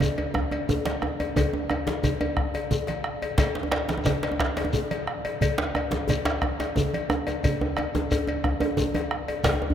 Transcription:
0.00 bombo rim, cowbell, djembe tone, low conga, djembe bass, shekere
0.18 cowbell, djembe tone
0.34 bombo rim, bombo low, djembe tone, high conga
0.51 cowbell, djembe tone
0.69 djembe tone, low conga, djembe bass, shekere
0.85 cowbell, djembe slap, high conga
1.02 bombo rim, djembe tone
1.20 cowbell, djembe tone
1.36 bombo low, cowbell, djembe tone, high conga, low conga, djembe bass, shekere
1.53 djembe tone
1.70 bombo rim, cowbell, djembe tone
1.87 djembe slap, djembe tone, high conga, shekere
2.03 bombo rim, cowbell, djembe tone, low conga, djembe bass, shekere
2.21 cowbell, djembe tone
2.37 bombo rim, bombo low, high conga
2.54 cowbell, djembe tone
2.71 low conga, djembe bass, shekere
2.87 cowbell, djembe slap, high conga
3.04 bombo rim
3.22 cowbell, djembe tone
3.38 bombo low, cowbell, djembe slap, high conga, djembe bass, low conga, shekere
3.55 djembe slap
3.63 djembe tone
3.72 bombo rim, cowbell, djembe slap
3.88 djembe slap, djembe tone, high conga, shekere
3.98 djembe tone
4.05 cowbell, djembe slap, djembe bass, low conga, shekere
4.23 cowbell, djembe slap
4.32 djembe tone
4.40 bombo rim, bombo low, djembe slap, high conga
4.57 cowbell, djembe slap, djembe tone
4.65 djembe tone
4.73 low conga, djembe bass, shekere
4.91 cowbell, djembe slap, high conga
5.07 bombo rim
5.25 cowbell, djembe tone
5.41 bombo rim, bombo low, cowbell, high conga, low conga, djembe bass, shekere
5.58 bombo rim, djembe slap
5.75 bombo rim, cowbell, djembe tone
5.91 djembe slap, djembe tone, high conga, shekere
6.08 cowbell, djembe tone, djembe bass, low conga, shekere
6.25 cowbell, djembe slap, shekere
6.42 bombo rim, bombo low, djembe slap, djembe tone, high conga
6.60 bombo rim, cowbell, djembe slap, djembe tone, shekere
6.76 djembe tone, low conga, djembe bass, shekere
6.93 bombo rim, cowbell, high conga, djembe bass
7.10 bombo rim, djembe slap, djembe tone, shekere
7.27 cowbell, djembe slap, djembe tone, shekere
7.43 bombo low, cowbell, djembe tone, high conga, djembe bass, low conga, shekere
7.61 djembe tone
7.77 bombo rim, cowbell, djembe tone
7.95 djembe slap, djembe tone, high conga, shekere
8.11 bombo rim, cowbell, djembe tone, djembe bass, shekere
8.27 cowbell, djembe tone
8.44 bombo rim, bombo low, high conga, djembe tone
8.60 cowbell, djembe tone
8.62 djembe tone
8.77 djembe tone, low conga, djembe bass, shekere
8.94 cowbell, djembe slap, high conga, djembe tone
9.11 bombo rim
9.28 cowbell, djembe tone
9.44 bombo low, cowbell, djembe slap, high conga, low conga, djembe bass, shekere
9.53 djembe tone
9.62 djembe tone
9.70 djembe bass

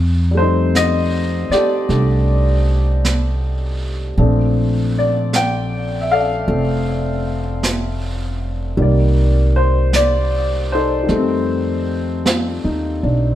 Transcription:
Already playing: F2
0.31 G3 A3
0.37 C4 C5
0.42 D#4
0.75 D#5, brush sweep, snare, hi-hat pedal
1.50 G4 A4 D5, muted upright bass stroke, snare
1.89 C2 A3 D4, brush sweep, snare
3.05 brush sweep, snare, hi-hat pedal
4.18 A#1 F3 A3 C4 D4, brush sweep
4.99 D5
5.33 G5, brush sweep, snare, hi-hat pedal
6.01 E5
6.11 A4 D5 F5
6.48 F1 A3 C4, brush sweep
7.63 brush sweep, snare, hi-hat pedal
8.77 C2 D#3 G3 A#3, brush sweep
8.82 D5
9.56 C5
9.93 D5, brush sweep, snare, hi-hat pedal
10.72 D#4 A4 C5
11.03 D#3 G3
11.08 F2 A3, brush sweep, snare
11.15 C4
12.26 F4, brush sweep, snare, hi-hat pedal
12.64 D#2 D#4
13.03 B1 D4

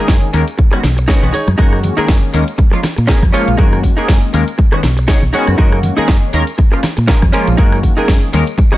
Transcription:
Already playing: D#3 G#3 A#3 C#4 D#4 G#4
0.00 A#4
0.08 F#2, kick, snare, closed hi-hat
0.23 tambourine
0.33 D#2 D#3 G#3 A#3 C#4 A#4, muted clean electric guitar stroke, open hi-hat
0.48 closed hi-hat, tambourine
0.58 muted clean electric guitar stroke, kick, closed hi-hat, tambourine, high conga
0.71 D#3 G#3 B3 C#4 F#4, muted clean electric guitar stroke, muted fingered electric bass stroke, cross-stick, tambourine
0.83 B1, muted clean electric guitar stroke, snare, open hi-hat, low conga
0.97 muted clean electric guitar stroke, closed hi-hat, tambourine
1.08 D#3 G#3 B3 C#4 D#4 F#4 G#4 C#5, kick, snare, closed hi-hat
1.22 B1 D#3 G#3 B3 C#4 F#4, tambourine, low conga
1.33 D#4 G#4 C#5, muted fingered electric bass stroke, open hi-hat
1.47 F#2, cross-stick, closed hi-hat, tambourine, high conga
1.58 F#2 D#3 G#3 A#3 C#4 D#4 F#4 G#4 A#4, kick, closed hi-hat, tambourine
1.73 cross-stick, tambourine
1.84 open hi-hat, low conga
1.97 D#3 G#3 A#3 C#4 D#4 G#4 A#4, muted fingered electric bass stroke, closed hi-hat, tambourine
2.08 F#2, kick, snare, closed hi-hat
2.23 tambourine
2.33 D#2 D#3 G#3 A#3 C#4 A#4, muted clean electric guitar stroke, open hi-hat
2.47 closed hi-hat, tambourine
2.58 muted clean electric guitar stroke, kick, closed hi-hat, tambourine, high conga
2.71 F3 G#3 A#3 C#4 F4, muted clean electric guitar stroke, tambourine
2.83 muted clean electric guitar stroke, cross-stick, snare, open hi-hat, low conga
2.96 A#2, muted clean electric guitar stroke, closed hi-hat, tambourine
3.07 F3 G#3 A#3 C#4 G#4 A#4, kick, snare, closed hi-hat
3.22 F2, kick, cross-stick, tambourine, low conga
3.32 F3 G#3 A#3 C#4 F4 G#4 C#5, muted fingered electric bass stroke, open hi-hat
3.48 A#1, closed hi-hat, tambourine
3.57 F#2 D#3 G#3 A#3 C#4 D#4 F#4 G#4 A#4, kick, closed hi-hat, tambourine
3.72 cross-stick, tambourine
3.83 kick, open hi-hat, low conga
3.97 D#3 G#3 A#3 C#4 D#4 G#4 A#4, muted fingered electric bass stroke, closed hi-hat, tambourine
4.08 F#2, kick, snare, closed hi-hat, tambourine
4.22 tambourine
4.33 D#2 D#3 G#3 A#3 C#4 A#4, muted clean electric guitar stroke, open hi-hat
4.48 closed hi-hat, tambourine
4.58 muted clean electric guitar stroke, kick, closed hi-hat, tambourine, high conga
4.72 D#3 G#3 B3 C#4 F#4, muted clean electric guitar stroke, muted fingered electric bass stroke, cross-stick, tambourine
4.83 B1, muted clean electric guitar stroke, snare, open hi-hat, low conga
4.97 muted clean electric guitar stroke, closed hi-hat, tambourine
5.08 D#3 G#3 B3 C#4 D#4 G#4 C#5, kick, snare, closed hi-hat
5.22 B1, tambourine, low conga
5.33 D#3 G#3 B3 C#4 D#4 F#4 G#4 C#5, muted fingered electric bass stroke, open hi-hat
5.47 F#2, cross-stick, closed hi-hat, tambourine
5.58 F#2 D#3 G#3 A#3 C#4 D#4 F#4 G#4 A#4, kick, closed hi-hat, tambourine
5.72 cross-stick, tambourine
5.83 open hi-hat, low conga
5.97 D#3 G#3 A#3 C#4 D#4 G#4 A#4, muted fingered electric bass stroke, closed hi-hat, tambourine
6.08 F#2, kick, snare, closed hi-hat, tambourine
6.22 tambourine
6.33 D#2 D#3 G#3 A#3 C#4 A#4, muted clean electric guitar stroke, open hi-hat
6.47 closed hi-hat, tambourine
6.58 muted clean electric guitar stroke, kick, closed hi-hat, tambourine, high conga
6.72 F3 G#3 A#3 C#4 F4, muted clean electric guitar stroke, tambourine
6.83 muted clean electric guitar stroke, cross-stick, snare, open hi-hat, low conga
6.97 A#2, muted clean electric guitar stroke, closed hi-hat, tambourine
7.07 F3 G#3 A#3 C#4 G#4 A#4, kick, snare, closed hi-hat
7.22 F2, kick, cross-stick, tambourine, low conga
7.32 F3 G#3 A#3 C#4 F4 G#4 A#4, muted fingered electric bass stroke, open hi-hat
7.47 A#1, closed hi-hat, tambourine
7.57 F#2 D#3 G#3 A#3 C#4 D#4 F#4 G#4 A#4, kick, closed hi-hat
7.72 cross-stick, tambourine
7.83 kick, open hi-hat, low conga
7.97 D#3 G#3 A#3 C#4 D#4 G#4 A#4, muted fingered electric bass stroke, closed hi-hat, tambourine
8.08 F#2, kick, snare, closed hi-hat
8.22 tambourine
8.32 D#2 D#3 G#3 A#3 C#4 A#4, muted clean electric guitar stroke, open hi-hat, high conga
8.46 closed hi-hat, tambourine
8.58 muted clean electric guitar stroke, kick, closed hi-hat, tambourine, high conga
8.72 D#3 G#3 B3 C#4 F#4, muted clean electric guitar stroke, muted fingered electric bass stroke, cross-stick, tambourine

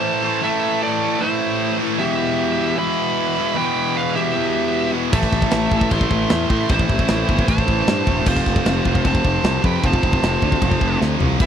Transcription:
Already playing: A2 E3 A3 C5 A5
0.22 A2 E3 A3
0.42 A2 E3 A3 A4 E5
0.83 A4 D5
1.02 A2 E3 A3
1.20 A2 E3 A3 E4 C5
1.79 A2 E3 A3
1.98 E2 B2 E3 G4 E5
2.58 E2 B2 E3
2.77 E2 B2 E3 E5 B5
3.36 E2 B2 E3
3.54 E2 B2 B4 G5
3.59 E3
3.97 B4 F5
4.15 E2 B2 E3 G4 E5
4.34 E2 B2 E3
4.92 E2 B2 E3
5.11 A1 A2 E3 A4 E5, kick, crash, china
5.15 A3
5.23 kick
5.32 A1, kick
5.42 kick
5.51 A1, snare, china
5.71 A1 E3 A3, kick
5.76 A2
5.81 kick
5.91 A1 A2 E3 A3 E5 C6, kick, china
6.01 kick
6.11 A1, kick
6.29 E2, snare, china
6.49 A2 E3 A3, kick
6.69 A1 A2 E3 A3 C5, kick, china
6.73 E4
6.79 kick
6.89 A1, kick
6.99 kick
7.08 A1, snare, china
7.28 G1 A2 E3 A3, kick
7.39 kick
7.47 A1 A2 E3 A3 C5 A5, kick, china
7.58 kick
7.68 A1, kick
7.87 G2, snare, china
8.06 E1 A2 E3 A3, kick
8.25 F1 F2 C3 F4 C5, kick, china, crash
8.29 F3
8.37 kick
8.46 F1, kick
8.56 kick
8.66 F1, snare, china
8.85 F1 C3 F3, kick
8.89 F2
8.95 kick
9.04 F1 F2 C3 F3 C5 A5, kick, china
9.15 kick
9.25 F1, kick
9.44 C2, snare, china
9.62 F2 C3 F3 B4 G5, kick
9.81 F1 F2 C3 F3 C5, kick, china
9.87 A5
9.93 kick
10.03 F1, kick
10.13 kick
10.23 F1, snare, china
10.42 D2 F2 C3 F3, kick
10.52 kick
10.61 F1 F2 C3 F3, kick, china
10.71 kick
10.81 F1, kick
11.01 D2, snare
11.19 C2 F2 C3 F3, floor tom
11.39 E1 E2 B2 E3 E5, kick, crash

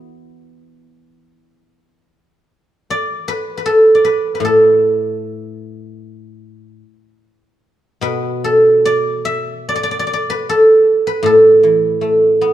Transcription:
Already playing: E3 B3 E4 F#4 A4
2.90 D5
3.28 B4
3.57 B4
3.66 A4
3.95 D5
4.05 B4
4.35 B4
4.40 A2
4.45 A4
8.01 B2 B4
8.44 A4
8.85 D5
9.25 E5
9.69 D5
9.76 D5
9.83 D5
9.91 D5
9.99 D5
10.07 D5
10.13 D5
10.30 B4
10.49 A4
11.07 B4
11.23 A2 A4
11.63 E3
12.01 A3
12.41 B3

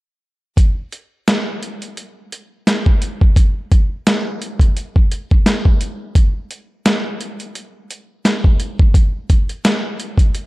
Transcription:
0.57 kick, closed hi-hat
0.92 closed hi-hat
1.28 snare, closed hi-hat
1.63 closed hi-hat
1.82 closed hi-hat
1.97 closed hi-hat
2.32 closed hi-hat
2.67 snare, closed hi-hat
2.86 kick
3.02 closed hi-hat
3.21 kick
3.36 kick, closed hi-hat
3.72 kick, closed hi-hat
4.07 snare, closed hi-hat
4.42 closed hi-hat
4.60 kick, closed hi-hat
4.77 closed hi-hat
4.96 kick
5.12 closed hi-hat
5.31 kick
5.46 snare, closed hi-hat
5.65 kick
5.81 closed hi-hat
6.15 kick, closed hi-hat
6.51 closed hi-hat
6.86 snare, closed hi-hat
7.21 closed hi-hat
7.40 closed hi-hat
7.55 closed hi-hat
7.91 closed hi-hat
8.25 snare, closed hi-hat
8.44 kick
8.60 closed hi-hat
8.79 kick
8.94 kick, closed hi-hat
9.30 kick, closed hi-hat
9.49 closed hi-hat
9.65 snare, closed hi-hat
10.00 closed hi-hat
10.18 kick, closed hi-hat
10.35 closed hi-hat

